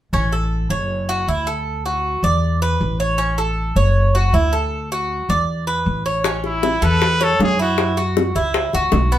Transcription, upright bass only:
0.13 0.66 A1 medium
0.70 1.23 F#1 medium
1.27 2.17 D2 medium
2.23 2.76 E2 medium
2.81 3.70 A1 medium
3.76 4.29 F#1 medium
4.33 5.23 D2 medium
5.29 5.82 E2 medium
5.86 6.76 A1 medium
6.82 7.35 E2 medium
7.39 8.29 F#2 medium
8.35 8.71 C#2 medium
8.73 8.91 C#2 medium
8.93 9.18 B1 medium

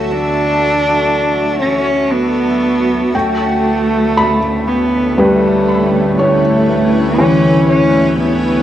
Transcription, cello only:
0.00 0.13 A3 medium
0.11 1.59 D4 loud
1.60 2.12 C#4 loud
2.11 3.16 B3 loud
3.15 4.69 A3 loud
4.67 5.21 B3 medium
5.19 6.18 A3 medium
6.18 7.21 A3 loud
7.20 7.69 C#4 medium
7.69 8.15 C#4 loud
8.19 8.63 B3 medium

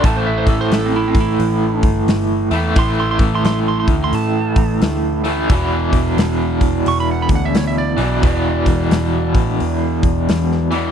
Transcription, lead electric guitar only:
0.05 0.18 A5 loud
0.17 0.25 C5 medium
0.26 0.46 E5 medium
0.38 0.44 C5 loud
0.49 0.61 A4 medium
0.61 0.74 C5 medium
0.74 0.87 A4 medium
0.86 0.94 C4 medium
0.96 1.15 E4 medium
1.08 1.14 C4 medium
1.20 1.85 E4 loud
2.79 2.91 C6 medium
3.00 3.10 C6 medium
3.11 3.18 C6 loud
3.35 3.44 C6 medium
3.45 3.59 C6 medium
3.68 3.79 C6 medium
3.80 3.86 C6 medium
4.04 4.15 C6 medium
4.15 5.46 A5 loud
6.88 7.00 C#6 loud
7.00 7.09 B5 loud
7.11 7.30 F#5 medium
7.22 7.28 B5 medium
7.35 7.48 F#5 medium
7.45 7.57 E5 medium
7.57 7.67 C#5 medium
7.67 7.76 E5 medium
7.78 9.79 D5 loud

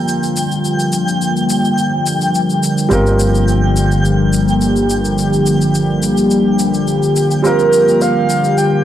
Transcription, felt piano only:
0.00 2.87 G3 medium
0.00 2.87 C4 medium
0.00 2.88 F4 medium
0.00 2.89 A#4 medium
2.89 7.40 G3 medium
2.89 7.40 C4 medium
2.89 7.41 F4 medium
2.93 7.42 A#4 medium
7.42 8.84 G3 medium
7.42 8.84 C4 medium
7.42 8.84 F4 medium
7.46 8.84 A#4 medium

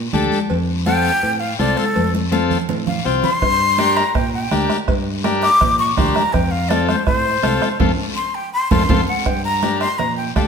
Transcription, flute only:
0.86 1.41 G5 loud
1.40 1.58 F5 medium
1.59 1.79 D5 medium
1.77 2.13 A4 loud
2.87 3.06 F5 medium
3.05 3.22 G5 medium
3.23 3.98 C6 loud
3.97 4.17 A#5 loud
4.15 4.33 G5 medium
4.34 4.69 G5 loud
5.43 5.78 D6 loud
5.79 5.98 C#6 medium
5.97 6.16 C6 medium
6.15 6.34 A#5 loud
6.33 6.52 G5 loud
6.51 6.70 F5 medium
6.69 6.87 D5 medium
6.87 7.05 C5 loud
7.06 7.77 C5 loud
8.16 8.36 C6 medium
8.35 8.52 G5 loud
8.53 8.71 C6 loud
8.71 9.07 C6 medium
9.08 9.28 F#5 loud
9.27 9.44 G5 medium
9.45 9.79 A#5 loud
9.81 10.00 C6 loud
9.98 10.16 A#5 loud
10.17 10.34 G5 medium
10.35 10.41 F5 medium

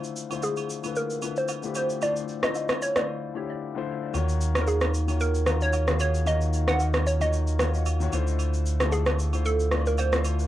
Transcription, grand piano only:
0.00 0.16 D3 medium
0.00 0.16 A3 medium
0.00 0.16 E4 medium
0.00 0.17 F4 medium
0.00 0.17 C5 loud
0.30 0.72 D3 medium
0.30 0.72 A3 medium
0.30 0.72 E4 medium
0.30 0.73 F4 medium
0.30 0.73 C5 medium
0.83 1.15 D3 medium
0.83 1.15 A3 medium
0.83 1.15 E4 medium
0.83 1.16 F4 medium
0.83 1.16 B4 medium
1.21 1.54 D3 medium
1.21 1.54 A3 medium
1.21 1.55 E4 medium
1.21 1.55 F4 medium
1.21 1.55 B4 medium
1.63 1.94 D3 medium
1.63 1.95 A3 medium
1.63 1.95 E4 medium
1.63 1.95 F4 medium
1.63 1.96 G4 medium
2.01 2.34 D3 medium
2.01 2.34 A3 medium
2.01 2.34 E4 medium
2.01 2.35 F4 medium
2.01 2.35 C5 medium
2.42 2.84 D3 medium
2.42 2.84 A3 medium
2.42 2.85 E4 medium
2.42 2.85 F4 medium
2.42 2.85 C5 medium
2.95 3.27 D3 medium
2.95 3.27 A3 medium
2.95 3.28 E4 medium
2.95 3.28 F4 medium
2.95 3.28 C5 medium
3.34 3.67 D3 medium
3.34 3.67 A3 medium
3.34 3.67 E4 medium
3.34 3.68 F4 medium
3.34 3.68 G4 medium
3.75 4.07 D3 medium
3.75 4.07 A3 medium
3.75 4.07 E4 medium
3.75 4.08 F4 medium
3.75 4.08 C5 loud
4.13 4.46 D#3 medium
4.13 4.47 A#3 medium
4.13 4.47 F4 medium
4.13 4.47 F#4 medium
4.13 4.48 C#5 loud
4.54 4.96 D#3 medium
4.54 4.97 A#3 medium
4.54 4.97 F4 medium
4.54 4.97 F#4 medium
4.54 4.98 C#5 medium
5.08 5.39 D#3 medium
5.08 5.40 A#3 medium
5.08 5.40 F4 medium
5.08 5.40 F#4 medium
5.08 5.41 C#5 medium
5.46 5.79 D#3 medium
5.46 5.79 A#3 medium
5.46 5.80 F4 medium
5.46 5.80 F#4 medium
5.46 5.80 A#4 medium
5.87 6.19 D#3 medium
5.87 6.19 A#3 medium
5.87 6.20 F4 medium
5.87 6.20 F#4 medium
5.87 6.20 G#4 medium
6.26 6.59 D#3 medium
6.26 6.59 A#3 medium
6.26 6.59 F4 medium
6.26 6.60 F#4 medium
6.26 6.60 C#5 medium
6.67 7.09 D#3 medium
6.67 7.09 A#3 medium
6.67 7.09 D#4 medium
6.67 7.10 F#4 medium
6.67 7.10 A#4 medium
7.20 7.52 D#3 medium
7.20 7.52 A#3 medium
7.20 7.52 F4 medium
7.20 7.53 F#4 medium
7.20 7.53 C#5 medium
7.59 7.91 D#3 medium
7.59 7.92 A#3 medium
7.59 7.92 F4 medium
7.59 7.92 F#4 medium
7.59 7.93 C#5 medium
8.00 8.12 D#3 medium
8.00 8.12 A#3 medium
8.00 8.12 F4 medium
8.00 8.13 F#4 medium
8.00 8.13 C#5 loud
8.12 8.65 D3 medium
8.12 8.65 A3 medium
8.12 8.66 E4 medium
8.12 8.66 F4 medium
8.12 8.66 C5 loud
8.79 9.21 D3 medium
8.79 9.21 A3 medium
8.79 9.22 E4 medium
8.79 9.22 F4 medium
8.79 8.87 G4 medium
8.88 9.26 A4 medium
9.32 9.64 D3 medium
9.32 9.64 A3 medium
9.32 9.65 E4 medium
9.32 9.65 F4 medium
9.32 9.65 C5 medium
9.71 10.04 D3 medium
9.71 10.04 A3 medium
9.71 10.04 E4 medium
9.71 10.05 F4 medium
9.71 10.05 D5 medium
10.12 10.44 D3 medium
10.12 10.44 A3 medium
10.12 10.44 E4 medium
10.12 10.45 F4 medium
10.12 10.45 C5 medium

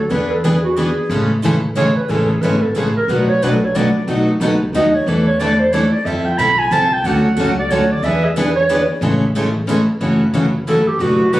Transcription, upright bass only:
0.11 0.90 E2 medium
1.09 1.89 A1 medium
2.09 2.36 A1 medium
2.42 2.70 G#1 medium
2.75 3.03 A1 medium
3.08 3.88 B1 medium
4.07 4.34 B1 medium
4.40 4.69 C#2 medium
4.73 5.02 D#2 medium
5.06 5.86 E2 medium
6.05 6.32 F2 medium
6.39 6.67 B1 medium
6.71 7.00 C2 medium
7.04 7.31 D2 medium
7.37 7.66 C#2 medium
7.71 7.99 D2 medium
8.03 8.82 E2 medium
9.01 9.81 A1 medium
10.01 10.80 F#1 medium
11.00 11.40 F#1 medium

